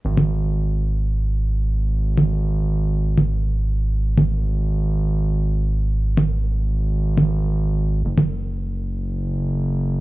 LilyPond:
<<
  \new Staff \with { instrumentName = "Analog synth bass" } { \clef bass \time 4/4 \key fis \mixolydian \tempo 4 = 120 gis,,1~ | gis,,1~ | gis,,1~ | gis,,1 |
fis,,1 | }
  \new DrumStaff \with { instrumentName = "Drums" } \drummode { \time 4/4 r16 cgl8. r4 r4 r4 | r16 cgl8. r4 r16 cgl8. r4 | r16 cgl8. r4 r4 r4 | r16 cgl8. r4 r16 cgl8. r4 |
r16 cgl8. r4 r4 r4 | }
>>